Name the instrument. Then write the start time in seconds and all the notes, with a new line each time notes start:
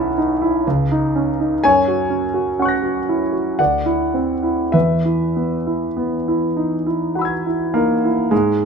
grand piano
Already playing: B1 C#4 E4 F#5 A5 B5
0.18 D#4
0.42 E4
0.67 C#2
0.92 D#4
1.16 C#4
1.40 D#4
1.64 F#2 C#5 G#5
1.88 F#4
2.10 C#4
2.34 F#4
2.59 C#4 F#5 C#6
2.65 F#6 A#6
2.83 F#4
3.09 E4
3.33 F#4
3.59 D2 D5 F#5
3.86 E4
4.14 C4
4.43 E4
4.72 E2 B4 E5
5.05 E4
5.36 B3
5.67 E4
5.97 B3
6.28 E4
6.57 D#4
6.87 E4
7.15 F#4 F#5 B5
7.21 E6 G#6
7.46 E4
7.74 A#3 D#4
8.04 E4
8.31 G#2 G#3